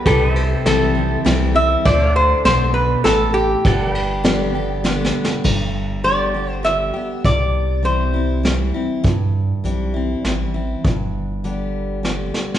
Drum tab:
CC |------------------|------------------|------------------|x-----------------|
RD |x--x--x-----x-----|x-----x-----x-----|x--x--x-----------|------------------|
HH |------------------|------------------|------------------|------x-----x-----|
SD |------o-----o-----|------o-----o-----|------o-----o-o-o-|------------r-----|
BD |o-----------------|o-----------------|o-----------------|o-----------------|

CC |------------------|------------------|------------------|
RD |------------------|------------------|------------------|
HH |x-----x-----x-----|x-----x-----x-----|x-----x-----x-----|
SD |------------o-----|------------o-----|------------o--o-o|
BD |o-----------------|o-----------------|o-----------------|